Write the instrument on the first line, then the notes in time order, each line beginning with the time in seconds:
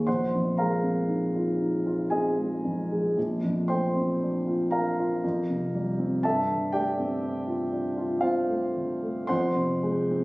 grand piano
0.07 A#1 C5 F#5 C6
0.35 F2
0.58 G#3 A#4 F5 A#5
0.83 C4
1.08 D#4
1.35 F4
1.61 D#4
1.86 F4
2.10 C4 G#4 D#5 G#5
2.38 G#3
2.64 F2
2.92 G#3
3.17 A#1
3.44 F2
3.68 A3 C5 G5 C6
3.96 C4
4.22 D4
4.47 F4
4.71 D4 A#4 F5 A#5
4.99 F4
5.24 F2
5.50 C3
5.75 G3
5.99 C4
6.23 G2 A4 E5 A5
6.49 D3
6.72 A3 G4 D5 G5
6.99 C4
7.22 D4
7.47 F4
7.72 D4
7.97 F4
8.21 C4 F4 C5 F5
8.48 A3
8.75 D3
9.02 A3
9.27 F2 C5 F#5 C6
9.56 C3
9.83 G#3
10.11 C4